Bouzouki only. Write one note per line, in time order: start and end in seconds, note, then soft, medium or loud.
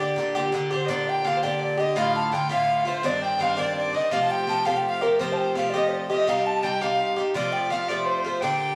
0.00 0.17 D3 soft
0.00 0.17 D4 soft
0.00 0.17 G4 medium
0.16 0.35 A#2 medium
0.16 0.35 D3 medium
0.16 0.34 D4 medium
0.16 0.34 G4 medium
0.35 0.51 A#2 medium
0.35 0.52 D3 medium
0.35 0.53 D4 medium
0.35 0.53 G4 medium
0.52 0.71 A#2 medium
0.52 0.72 D3 medium
0.52 0.71 D4 medium
0.52 0.69 G4 medium
0.71 0.88 D3 soft
0.71 0.89 D4 medium
0.71 0.89 G4 medium
0.88 1.23 A#2 medium
0.88 1.25 D3 medium
0.88 1.26 D4 medium
0.88 1.26 G4 medium
1.24 1.43 A#2 medium
1.24 1.43 D3 medium
1.24 1.42 D4 medium
1.24 1.42 G4 medium
1.43 1.80 A#2 medium
1.43 1.81 D3 medium
1.43 1.79 D4 medium
1.43 1.76 G4 medium
1.77 1.95 D3 soft
1.77 1.97 D4 soft
1.77 1.96 G4 medium
1.96 2.31 A2 medium
1.96 2.32 D3 medium
1.96 2.33 A3 medium
1.96 2.33 F4 medium
2.32 2.50 A2 soft
2.32 2.50 D3 medium
2.32 2.49 A3 medium
2.32 2.48 F4 medium
2.49 2.87 A2 medium
2.49 2.87 D3 medium
2.49 2.86 A3 medium
2.49 2.84 F4 medium
2.85 3.03 D3 soft
2.85 3.04 A3 soft
2.85 3.04 F4 medium
3.03 3.38 G2 medium
3.03 3.39 D#3 medium
3.03 3.41 C4 medium
3.03 3.41 D4 medium
3.39 3.58 G2 medium
3.39 3.57 D#3 medium
3.39 3.56 C4 medium
3.39 3.56 D4 medium
3.57 3.95 G2 medium
3.57 3.94 D#3 medium
3.57 3.94 C4 medium
3.57 3.92 D4 medium
3.93 4.12 D#3 soft
3.93 4.12 C4 soft
3.93 4.12 D4 medium
4.11 4.46 C3 medium
4.11 4.47 F3 medium
4.11 4.48 A3 medium
4.11 4.50 G4 medium
4.47 4.66 C3 medium
4.47 4.65 F3 medium
4.47 4.65 A3 medium
4.47 4.64 G4 medium
4.65 5.03 C3 medium
4.65 5.02 F3 medium
4.65 5.02 A3 medium
4.65 5.01 G4 medium
5.01 5.19 F3 soft
5.01 5.20 A3 soft
5.01 5.20 G4 soft
5.19 5.54 C3 medium
5.19 5.55 F3 medium
5.19 5.56 A3 medium
5.19 5.57 G4 medium
5.55 5.73 C3 medium
5.55 5.74 F3 medium
5.55 5.73 A3 medium
5.55 5.72 G4 medium
5.74 6.11 C3 medium
5.74 6.10 F3 medium
5.74 6.10 A3 medium
5.74 6.08 G4 medium
6.10 6.28 F3 soft
6.10 6.28 A3 soft
6.10 6.28 G4 soft
6.27 6.61 C3 medium
6.27 6.62 G3 medium
6.27 6.63 D#4 medium
6.27 6.64 G4 medium
6.63 6.81 C3 medium
6.63 6.81 G3 medium
6.63 6.81 D#4 medium
6.63 6.80 G4 medium
6.81 7.18 C3 soft
6.81 7.18 G3 medium
6.81 7.17 D#4 medium
6.81 7.15 G4 medium
7.16 7.35 G3 soft
7.16 7.36 D#4 soft
7.16 7.35 G4 soft
7.34 7.69 C3 medium
7.34 7.71 F3 medium
7.34 7.71 A3 medium
7.34 7.72 F4 medium
7.70 7.89 C3 medium
7.70 7.89 F3 medium
7.70 7.89 A3 medium
7.70 7.88 F4 medium
7.89 8.26 C3 medium
7.89 8.26 F3 medium
7.89 8.25 A3 medium
7.89 8.23 F4 medium
8.24 8.42 F3 soft
8.24 8.43 A3 soft
8.24 8.43 F4 soft
8.42 8.75 A#2 medium
8.42 8.75 D3 medium
8.42 8.75 D4 medium
8.42 8.75 G4 medium